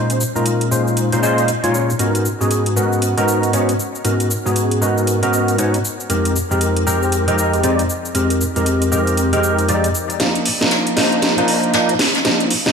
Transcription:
Already playing: tine electric piano A#2 G#3 C#4 D#4 F4 C5
0.10 closed hi-hat, shaker
0.21 shaker
0.36 tine electric piano A#2 G#3 C#4 D#4 F4 A#4, shaker
0.46 closed hi-hat, shaker
0.61 closed hi-hat
0.71 tine electric piano A#2 G#3 C#4 D#4 F4 C5, shaker
0.87 shaker
0.97 closed hi-hat, shaker
1.12 tine electric piano A#2 G#3 C#4 D#4 F4 C5, closed hi-hat, shaker
1.22 tine electric piano A#2 G#3 C#4 D#4 F4 C5, shaker
1.38 closed hi-hat, shaker
1.48 closed hi-hat, shaker
1.64 tine electric piano A#2 G#3 C#4 D#4 F4 C#5, closed hi-hat, shaker
1.74 shaker
1.90 shaker
1.99 tine electric piano G#2 B3 C#4 D#4 F#4 A#4, closed hi-hat, shaker
2.15 closed hi-hat, shaker
2.26 shaker
2.41 tine electric piano G#2 B3 C#4 D#4 F#4 G#4, shaker
2.51 closed hi-hat, shaker
2.66 closed hi-hat
2.76 tine electric piano G#2 B3 C#4 D#4 F#4 A#4, shaker
2.93 shaker
3.02 closed hi-hat, shaker
3.17 tine electric piano G#2 B3 C#4 D#4 F#4 A#4, closed hi-hat, shaker
3.28 shaker
3.43 closed hi-hat, shaker
3.53 tine electric piano G#2 B3 C#4 D#4 F#4 C#5, closed hi-hat, shaker
3.69 closed hi-hat, shaker
3.80 shaker
3.95 shaker
4.04 tine electric piano G#2 B3 C#4 D#4 F#4 A#4, closed hi-hat, shaker
4.20 closed hi-hat, shaker
4.31 shaker
4.46 tine electric piano G#2 B3 C#4 D#4 F#4 G#4, shaker
4.56 closed hi-hat, shaker
4.71 closed hi-hat
4.81 tine electric piano G#2 B3 C#4 D#4 F#4 A#4, shaker
4.98 shaker
5.07 closed hi-hat, shaker
5.23 tine electric piano G#2 B3 C#4 D#4 F#4 A#4, closed hi-hat, shaker
5.33 shaker
5.48 closed hi-hat, shaker
5.58 tine electric piano G#2 B3 C#4 D#4 F#4 C#5, closed hi-hat, shaker
5.74 closed hi-hat, shaker
5.85 shaker
6.00 shaker
6.10 tine electric piano F2 G#3 C4 D#4 G4 A#4, closed hi-hat, shaker
6.25 closed hi-hat, shaker
6.36 shaker
6.51 tine electric piano F2 G#3 C4 D#4 G4 A#4, shaker
6.61 closed hi-hat, shaker
6.77 closed hi-hat
6.87 tine electric piano F2 G#3 C4 D#4 G4 A#4, shaker
7.03 shaker
7.12 closed hi-hat, shaker
7.28 tine electric piano F2 G#3 C4 D#4 G4 A#4, closed hi-hat, shaker
7.38 shaker
7.53 closed hi-hat, shaker
7.63 tine electric piano F2 G#3 C4 D#4 G4 D5, closed hi-hat, shaker
7.79 closed hi-hat, shaker
7.90 shaker
8.05 shaker
8.15 tine electric piano F2 G#3 C4 D#4 G4 A#4, closed hi-hat, shaker
8.30 closed hi-hat, shaker
8.41 shaker
8.56 tine electric piano F2 G#3 C4 D#4 G4 A#4, closed hi-hat, shaker
8.66 closed hi-hat, shaker
8.82 closed hi-hat, shaker
8.92 tine electric piano F2 G#3 C4 D#4 G4 A#4, shaker
9.07 closed hi-hat, shaker
9.17 closed hi-hat, shaker
9.33 tine electric piano F2 G#3 C4 D#4 G4 A#4, closed hi-hat, shaker
9.44 shaker
9.59 closed hi-hat, shaker
9.69 tine electric piano F2 G#3 C4 D#4 G4 D5, closed hi-hat, shaker
9.84 closed hi-hat, shaker
9.95 shaker
10.10 closed hi-hat, shaker
10.20 tine electric piano F3 A#3 D4 D#4, snare, closed hi-hat, ride
10.35 closed hi-hat
10.45 open hi-hat, ride
10.61 tine electric piano F3 A#3 D4 D#4, snare
10.71 snare, closed hi-hat, ride
10.87 closed hi-hat
10.97 tine electric piano F3 A#3 D4 D#4, snare, open hi-hat, ride
11.12 closed hi-hat
11.22 snare, closed hi-hat, ride
11.38 tine electric piano F3 A#3 D4 D#4, closed hi-hat, ride
11.48 open hi-hat, ride
11.64 closed hi-hat
11.73 tine electric piano F3 A#3 D4 D#4, snare, closed hi-hat, ride
11.89 closed hi-hat, ride
11.99 snare, open hi-hat, ride
12.15 snare, closed hi-hat
12.25 tine electric piano F3 A#3 D4 D#4, snare, closed hi-hat, ride
12.40 closed hi-hat
12.50 open hi-hat, ride
12.66 tine electric piano F3 A#3 D4 D#4, snare

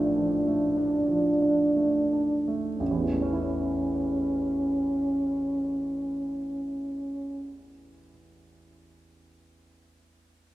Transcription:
Already playing: grand piano A1 A2 F3 A3 D4, french horn D4
0.18 grand piano F3
0.47 grand piano A3
0.77 grand piano D4
1.08 grand piano F3
1.42 grand piano D4
1.76 grand piano A3
2.13 grand piano D4
2.48 grand piano A3
2.79 grand piano A1, french horn C#4
2.91 grand piano E2
3.02 grand piano E3
3.12 grand piano A3
3.22 grand piano C#4
3.33 grand piano E4

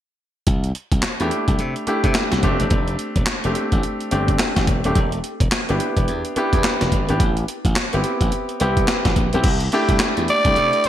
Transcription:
0.47 slap bass C2, kick, closed hi-hat
0.64 closed hi-hat
0.75 closed hi-hat
0.92 slap bass C2, kick, closed hi-hat
1.03 muted slap bass stroke, snare, clap, closed hi-hat
1.20 slap bass E2, grand piano A3 D4 E4 G4, closed hi-hat
1.31 closed hi-hat
1.48 slap bass C2, kick, closed hi-hat
1.59 slap bass C3, closed hi-hat
1.76 closed hi-hat
1.87 grand piano A3 D4 E4 G4, muted slap bass stroke, closed hi-hat
2.04 slap bass C3, kick, closed hi-hat
2.15 snare, clap, closed hi-hat
2.32 slap bass C2, snare, closed hi-hat
2.43 slap bass F1, grand piano A3 C4 D4 G4, kick, closed hi-hat
2.60 slap bass E1, closed hi-hat
2.70 slap bass F1, kick, closed hi-hat
2.88 closed hi-hat
2.99 closed hi-hat
3.16 slap bass E1, kick, closed hi-hat
3.26 snare, clap, closed hi-hat
3.44 slap bass F1, grand piano A3 C4 D4 G4, closed hi-hat
3.55 closed hi-hat
3.72 slap bass A1, kick, closed hi-hat
3.83 closed hi-hat
4.01 closed hi-hat
4.11 slap bass G1, grand piano A3 C4 D4 G4, closed hi-hat
4.28 kick, closed hi-hat
4.39 snare, clap, closed hi-hat
4.56 slap bass A1, kick, snare, closed hi-hat
4.67 slap bass E1, kick, closed hi-hat
4.84 slap bass D#1, grand piano A3 C4 D4 G4, closed hi-hat
4.95 slap bass E1, kick, closed hi-hat
5.12 closed hi-hat
5.24 closed hi-hat
5.40 slap bass E1, kick, closed hi-hat
5.52 snare, clap, closed hi-hat
5.69 slap bass G1, grand piano B3 D4 E4 G4, closed hi-hat
5.80 closed hi-hat
5.97 slap bass E1, kick, closed hi-hat
6.08 slap bass E2, closed hi-hat
6.25 closed hi-hat
6.36 grand piano B3 D4 E4 G4, muted slap bass stroke, closed hi-hat
6.53 slap bass E2, kick, closed hi-hat
6.64 snare, clap, closed hi-hat
6.81 slap bass E1, snare, closed hi-hat
6.92 slap bass G1, kick, closed hi-hat
7.09 slap bass G#1, grand piano B3 D4 E4 G4, closed hi-hat
7.20 slap bass A1, kick, closed hi-hat
7.37 closed hi-hat
7.48 closed hi-hat
7.65 slap bass A1, kick, closed hi-hat
7.76 snare, clap, closed hi-hat
7.93 slap bass G1, grand piano B3 C4 E4 G4, closed hi-hat
8.04 closed hi-hat
8.21 slap bass A1, kick, closed hi-hat
8.32 closed hi-hat
8.49 closed hi-hat
8.60 slap bass C2, grand piano B3 C4 E4 G4, closed hi-hat
8.77 kick, closed hi-hat
8.88 snare, clap, closed hi-hat
9.05 slap bass A1, kick, snare, closed hi-hat
9.16 slap bass A#1, kick, closed hi-hat
9.33 slap bass B1, grand piano B3 C4 E4 G4, closed hi-hat
9.44 slap bass C2, kick, closed hi-hat, crash
9.60 closed hi-hat
9.72 grand piano A3 D4 E4 G4, closed hi-hat
9.89 slap bass C2, kick, closed hi-hat
10.00 snare, clap, closed hi-hat
10.17 slap bass E2, closed hi-hat
10.28 tenor saxophone D5, closed hi-hat
10.45 slap bass C2, grand piano A3 D4 E4 G4, kick, closed hi-hat
10.56 slap bass C3, closed hi-hat
10.73 closed hi-hat
10.84 muted slap bass stroke, closed hi-hat

